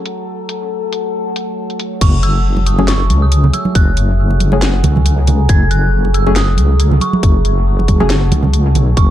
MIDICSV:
0, 0, Header, 1, 6, 480
1, 0, Start_track
1, 0, Tempo, 434783
1, 302, Time_signature, 4, 2, 24, 8
1, 10051, End_track
2, 0, Start_track
2, 0, Title_t, "Synth bell"
2, 0, Program_c, 0, 98
2, 2223, Note_on_c, 0, 85, 92
2, 2331, Note_off_c, 0, 85, 0
2, 2461, Note_on_c, 0, 88, 102
2, 2941, Note_on_c, 0, 87, 90
2, 2956, Note_off_c, 0, 88, 0
2, 3182, Note_on_c, 0, 85, 98
2, 3189, Note_off_c, 0, 87, 0
2, 3530, Note_off_c, 0, 85, 0
2, 3558, Note_on_c, 0, 87, 96
2, 3903, Note_on_c, 0, 88, 98
2, 3913, Note_off_c, 0, 87, 0
2, 4143, Note_on_c, 0, 90, 106
2, 4150, Note_off_c, 0, 88, 0
2, 5539, Note_off_c, 0, 90, 0
2, 6062, Note_on_c, 0, 92, 110
2, 6302, Note_on_c, 0, 90, 113
2, 6310, Note_off_c, 0, 92, 0
2, 6749, Note_off_c, 0, 90, 0
2, 6782, Note_on_c, 0, 88, 99
2, 7023, Note_on_c, 0, 87, 103
2, 7029, Note_off_c, 0, 88, 0
2, 7742, Note_on_c, 0, 85, 87
2, 7765, Note_off_c, 0, 87, 0
2, 9138, Note_off_c, 0, 85, 0
2, 9903, Note_on_c, 0, 85, 96
2, 10051, Note_off_c, 0, 85, 0
2, 10051, End_track
3, 0, Start_track
3, 0, Title_t, "Synth stab"
3, 0, Program_c, 1, 62
3, 3076, Note_on_c, 1, 54, 82
3, 3076, Note_on_c, 1, 57, 75
3, 3076, Note_on_c, 1, 61, 75
3, 3076, Note_on_c, 1, 68, 87
3, 3153, Note_off_c, 1, 57, 0
3, 3153, Note_off_c, 1, 68, 0
3, 3154, Note_off_c, 1, 54, 0
3, 3154, Note_off_c, 1, 61, 0
3, 4997, Note_on_c, 1, 57, 75
3, 4997, Note_on_c, 1, 61, 77
3, 4998, Note_on_c, 1, 54, 83
3, 4998, Note_on_c, 1, 68, 88
3, 5074, Note_off_c, 1, 54, 0
3, 5074, Note_off_c, 1, 57, 0
3, 5074, Note_off_c, 1, 61, 0
3, 5074, Note_off_c, 1, 68, 0
3, 6917, Note_on_c, 1, 54, 82
3, 6917, Note_on_c, 1, 57, 74
3, 6917, Note_on_c, 1, 68, 92
3, 6918, Note_on_c, 1, 61, 75
3, 6994, Note_off_c, 1, 54, 0
3, 6994, Note_off_c, 1, 57, 0
3, 6994, Note_off_c, 1, 61, 0
3, 6994, Note_off_c, 1, 68, 0
3, 8836, Note_on_c, 1, 54, 80
3, 8836, Note_on_c, 1, 57, 76
3, 8836, Note_on_c, 1, 61, 77
3, 8836, Note_on_c, 1, 68, 93
3, 8913, Note_off_c, 1, 54, 0
3, 8913, Note_off_c, 1, 57, 0
3, 8913, Note_off_c, 1, 68, 0
3, 8914, Note_off_c, 1, 61, 0
3, 10051, End_track
4, 0, Start_track
4, 0, Title_t, "Synth drone"
4, 0, Program_c, 2, 95
4, 0, Note_on_c, 2, 54, 75
4, 0, Note_on_c, 2, 57, 67
4, 0, Note_on_c, 2, 69, 81
4, 2179, Note_off_c, 2, 54, 0
4, 2180, Note_off_c, 2, 57, 0
4, 2209, Note_off_c, 2, 69, 0
4, 2222, Note_on_c, 2, 68, 87
4, 2223, Note_on_c, 2, 57, 70
4, 2224, Note_on_c, 2, 54, 77
4, 9885, Note_off_c, 2, 68, 0
4, 10051, Note_off_c, 2, 54, 0
4, 10051, Note_off_c, 2, 57, 0
4, 10051, End_track
5, 0, Start_track
5, 0, Title_t, "Wobble bass"
5, 0, Program_c, 3, 39
5, 2222, Note_on_c, 3, 30, 96
5, 3422, Note_on_c, 3, 37, 95
5, 3438, Note_off_c, 3, 30, 0
5, 3889, Note_off_c, 3, 37, 0
5, 4142, Note_on_c, 3, 30, 104
5, 4366, Note_off_c, 3, 30, 0
5, 4382, Note_on_c, 3, 30, 106
5, 5329, Note_off_c, 3, 30, 0
5, 5343, Note_on_c, 3, 37, 92
5, 6049, Note_off_c, 3, 37, 0
5, 6064, Note_on_c, 3, 30, 100
5, 7263, Note_on_c, 3, 37, 96
5, 7279, Note_off_c, 3, 30, 0
5, 7729, Note_off_c, 3, 37, 0
5, 7983, Note_on_c, 3, 30, 99
5, 8206, Note_off_c, 3, 30, 0
5, 8223, Note_on_c, 3, 30, 99
5, 9169, Note_off_c, 3, 30, 0
5, 9184, Note_on_c, 3, 37, 88
5, 9662, Note_on_c, 3, 35, 89
5, 9679, Note_off_c, 3, 37, 0
5, 9886, Note_off_c, 3, 35, 0
5, 9904, Note_on_c, 3, 30, 98
5, 10051, Note_off_c, 3, 30, 0
5, 10051, End_track
6, 0, Start_track
6, 0, Title_t, "Drums"
6, 61, Note_on_c, 9, 42, 77
6, 171, Note_off_c, 9, 42, 0
6, 541, Note_on_c, 9, 42, 75
6, 651, Note_off_c, 9, 42, 0
6, 1022, Note_on_c, 9, 42, 80
6, 1132, Note_off_c, 9, 42, 0
6, 1502, Note_on_c, 9, 42, 78
6, 1612, Note_off_c, 9, 42, 0
6, 1876, Note_on_c, 9, 42, 39
6, 1981, Note_off_c, 9, 42, 0
6, 1981, Note_on_c, 9, 42, 79
6, 2092, Note_off_c, 9, 42, 0
6, 2222, Note_on_c, 9, 36, 115
6, 2222, Note_on_c, 9, 42, 83
6, 2222, Note_on_c, 9, 49, 100
6, 2332, Note_off_c, 9, 42, 0
6, 2332, Note_off_c, 9, 49, 0
6, 2333, Note_off_c, 9, 36, 0
6, 2463, Note_on_c, 9, 42, 53
6, 2573, Note_off_c, 9, 42, 0
6, 2833, Note_on_c, 9, 62, 58
6, 2942, Note_on_c, 9, 42, 55
6, 2943, Note_off_c, 9, 62, 0
6, 3053, Note_off_c, 9, 42, 0
6, 3075, Note_on_c, 9, 62, 66
6, 3181, Note_on_c, 9, 38, 120
6, 3181, Note_on_c, 9, 39, 96
6, 3181, Note_on_c, 9, 42, 86
6, 3185, Note_off_c, 9, 62, 0
6, 3292, Note_off_c, 9, 38, 0
6, 3292, Note_off_c, 9, 39, 0
6, 3292, Note_off_c, 9, 42, 0
6, 3423, Note_on_c, 9, 42, 54
6, 3424, Note_on_c, 9, 63, 65
6, 3533, Note_off_c, 9, 42, 0
6, 3535, Note_off_c, 9, 63, 0
6, 3662, Note_on_c, 9, 42, 81
6, 3773, Note_off_c, 9, 42, 0
6, 3796, Note_on_c, 9, 64, 87
6, 3900, Note_on_c, 9, 63, 63
6, 3903, Note_on_c, 9, 42, 62
6, 3906, Note_off_c, 9, 64, 0
6, 4010, Note_off_c, 9, 63, 0
6, 4013, Note_off_c, 9, 42, 0
6, 4032, Note_on_c, 9, 63, 85
6, 4142, Note_on_c, 9, 42, 79
6, 4143, Note_off_c, 9, 63, 0
6, 4143, Note_on_c, 9, 36, 123
6, 4252, Note_off_c, 9, 42, 0
6, 4253, Note_off_c, 9, 36, 0
6, 4382, Note_on_c, 9, 42, 56
6, 4492, Note_off_c, 9, 42, 0
6, 4753, Note_on_c, 9, 62, 51
6, 4862, Note_on_c, 9, 42, 55
6, 4863, Note_off_c, 9, 62, 0
6, 4863, Note_on_c, 9, 63, 66
6, 4973, Note_off_c, 9, 42, 0
6, 4973, Note_off_c, 9, 63, 0
6, 4988, Note_on_c, 9, 62, 72
6, 5099, Note_off_c, 9, 62, 0
6, 5102, Note_on_c, 9, 38, 123
6, 5102, Note_on_c, 9, 39, 92
6, 5102, Note_on_c, 9, 42, 84
6, 5213, Note_off_c, 9, 38, 0
6, 5213, Note_off_c, 9, 39, 0
6, 5213, Note_off_c, 9, 42, 0
6, 5338, Note_on_c, 9, 64, 80
6, 5342, Note_on_c, 9, 42, 53
6, 5342, Note_on_c, 9, 62, 70
6, 5449, Note_off_c, 9, 64, 0
6, 5452, Note_off_c, 9, 62, 0
6, 5453, Note_off_c, 9, 42, 0
6, 5474, Note_on_c, 9, 63, 73
6, 5485, Note_on_c, 9, 64, 88
6, 5583, Note_on_c, 9, 42, 81
6, 5585, Note_off_c, 9, 63, 0
6, 5595, Note_off_c, 9, 64, 0
6, 5693, Note_off_c, 9, 42, 0
6, 5822, Note_on_c, 9, 42, 62
6, 5828, Note_on_c, 9, 64, 101
6, 5933, Note_off_c, 9, 42, 0
6, 5938, Note_off_c, 9, 64, 0
6, 6062, Note_on_c, 9, 42, 77
6, 6063, Note_on_c, 9, 36, 119
6, 6173, Note_off_c, 9, 42, 0
6, 6174, Note_off_c, 9, 36, 0
6, 6303, Note_on_c, 9, 42, 51
6, 6413, Note_off_c, 9, 42, 0
6, 6676, Note_on_c, 9, 62, 50
6, 6783, Note_on_c, 9, 42, 53
6, 6787, Note_off_c, 9, 62, 0
6, 6893, Note_off_c, 9, 42, 0
6, 6917, Note_on_c, 9, 62, 60
6, 7022, Note_on_c, 9, 38, 122
6, 7022, Note_on_c, 9, 39, 95
6, 7022, Note_on_c, 9, 42, 80
6, 7028, Note_off_c, 9, 62, 0
6, 7132, Note_off_c, 9, 38, 0
6, 7132, Note_off_c, 9, 39, 0
6, 7132, Note_off_c, 9, 42, 0
6, 7252, Note_on_c, 9, 63, 61
6, 7262, Note_on_c, 9, 42, 50
6, 7362, Note_off_c, 9, 63, 0
6, 7372, Note_off_c, 9, 42, 0
6, 7503, Note_on_c, 9, 42, 79
6, 7613, Note_off_c, 9, 42, 0
6, 7632, Note_on_c, 9, 64, 77
6, 7732, Note_on_c, 9, 63, 65
6, 7743, Note_off_c, 9, 64, 0
6, 7743, Note_on_c, 9, 42, 57
6, 7842, Note_off_c, 9, 63, 0
6, 7853, Note_off_c, 9, 42, 0
6, 7874, Note_on_c, 9, 63, 100
6, 7983, Note_on_c, 9, 36, 127
6, 7983, Note_on_c, 9, 42, 74
6, 7985, Note_off_c, 9, 63, 0
6, 8093, Note_off_c, 9, 36, 0
6, 8094, Note_off_c, 9, 42, 0
6, 8223, Note_on_c, 9, 42, 49
6, 8334, Note_off_c, 9, 42, 0
6, 8605, Note_on_c, 9, 62, 55
6, 8702, Note_on_c, 9, 36, 64
6, 8703, Note_on_c, 9, 42, 50
6, 8710, Note_on_c, 9, 63, 71
6, 8716, Note_off_c, 9, 62, 0
6, 8813, Note_off_c, 9, 36, 0
6, 8813, Note_off_c, 9, 42, 0
6, 8821, Note_off_c, 9, 63, 0
6, 8835, Note_on_c, 9, 62, 64
6, 8943, Note_on_c, 9, 38, 122
6, 8943, Note_on_c, 9, 39, 88
6, 8943, Note_on_c, 9, 42, 76
6, 8946, Note_off_c, 9, 62, 0
6, 9054, Note_off_c, 9, 38, 0
6, 9054, Note_off_c, 9, 39, 0
6, 9054, Note_off_c, 9, 42, 0
6, 9179, Note_on_c, 9, 64, 78
6, 9182, Note_on_c, 9, 62, 68
6, 9183, Note_on_c, 9, 42, 53
6, 9289, Note_off_c, 9, 64, 0
6, 9292, Note_off_c, 9, 62, 0
6, 9293, Note_off_c, 9, 42, 0
6, 9305, Note_on_c, 9, 64, 79
6, 9322, Note_on_c, 9, 63, 68
6, 9415, Note_off_c, 9, 64, 0
6, 9423, Note_on_c, 9, 42, 76
6, 9433, Note_off_c, 9, 63, 0
6, 9533, Note_off_c, 9, 42, 0
6, 9662, Note_on_c, 9, 42, 57
6, 9663, Note_on_c, 9, 64, 85
6, 9773, Note_off_c, 9, 42, 0
6, 9773, Note_off_c, 9, 64, 0
6, 9903, Note_on_c, 9, 36, 121
6, 9903, Note_on_c, 9, 42, 77
6, 10014, Note_off_c, 9, 36, 0
6, 10014, Note_off_c, 9, 42, 0
6, 10051, End_track
0, 0, End_of_file